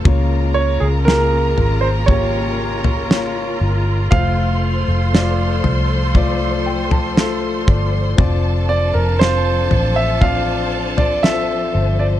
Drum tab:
SD |----o-------o---|----o-------o---|----o-------o---|
FT |o-----o-o--o----|o-----o-o--o----|o-----o-o--o----|
BD |o-------o-------|o-------o-----o-|o-------o-------|